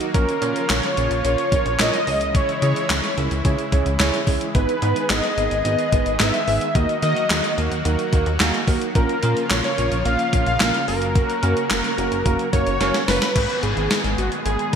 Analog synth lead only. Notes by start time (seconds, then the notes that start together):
0.14 A#4
0.69 C#5
1.25 C#5
1.80 D#5
2.35 C#5
2.62 C#5
4.55 B4
5.10 D#5
5.65 D#5
6.20 E5
6.75 D#5
7.03 D#5
8.96 A#4
9.51 C#5
9.64 C#5
10.06 F5
10.47 F5
10.88 A#4
12.53 C#5
13.08 B4
13.63 G#4
14.18 F#4
14.45 G#4